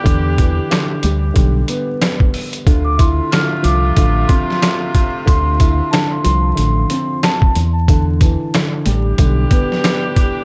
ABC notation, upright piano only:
X:1
M:4/4
L:1/8
Q:"Swing 16ths" 1/4=92
K:Ddor
V:1 name="Upright piano" clef=bass
[D,B,] E, D, G, D, B,3 | D, E D, F, D, C3 | D, E D, F, D, C2 z | D, E, D, G, D, B,3 |]